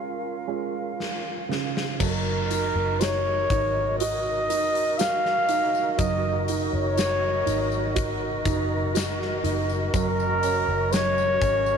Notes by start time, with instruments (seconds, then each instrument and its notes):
Already playing: grand piano C#3 G#3 C#4 F4, flute section C#4 F4 A#4 F5
0.47 grand piano G#3 C#4 F4
1.00 snare
1.49 grand piano C#3, snare
1.77 snare
2.00 fingered electric bass F#1, grand piano F#3, flute section D#4 F#4 A#4 D#5, flugelhorn A#4, kick, crash, tambourine
2.51 grand piano D#4, closed hi-hat, tambourine
2.75 fingered electric bass F#1
3.00 grand piano F#4, flugelhorn C#5, snare, closed hi-hat, tambourine
3.50 fingered electric bass G#1, grand piano D#4, kick, closed hi-hat, tambourine
3.99 grand piano F#4, flugelhorn D#5, closed hi-hat, tambourine
4.50 fingered electric bass F#1, grand piano D#4, closed hi-hat, tambourine
4.75 closed hi-hat
4.98 grand piano F#4, flugelhorn F5, snare, closed hi-hat, tambourine
5.26 snare
5.49 grand piano D#4, closed hi-hat, tambourine
5.75 tambourine
5.93 flugelhorn F5
5.98 fingered electric bass F#1, grand piano F#3, flugelhorn D#5, kick, closed hi-hat, tambourine
6.48 grand piano D#4, closed hi-hat, tambourine
6.73 fingered electric bass F#1, flugelhorn C#5
6.98 grand piano F#4, snare, closed hi-hat, tambourine
7.46 fingered electric bass G#1, grand piano D#4, closed hi-hat, tambourine
7.72 tambourine
7.95 grand piano F#4, kick, closed hi-hat, tambourine
8.45 fingered electric bass F#1, grand piano D#4, kick, closed hi-hat, tambourine
8.94 grand piano F#4, snare, closed hi-hat, tambourine
9.22 snare
9.44 fingered electric bass F#1, grand piano D#4, closed hi-hat, tambourine
9.70 tambourine
9.94 fingered electric bass F#1, grand piano F#3, flute section C#4, flugelhorn A#4, kick, closed hi-hat, tambourine
10.20 tambourine
10.43 grand piano C#4, closed hi-hat, tambourine
10.68 fingered electric bass F#1
10.92 grand piano F#3, flugelhorn C#5, snare, closed hi-hat, tambourine
11.18 tambourine
11.41 fingered electric bass G#1, grand piano C#4, kick, closed hi-hat, tambourine
11.66 tambourine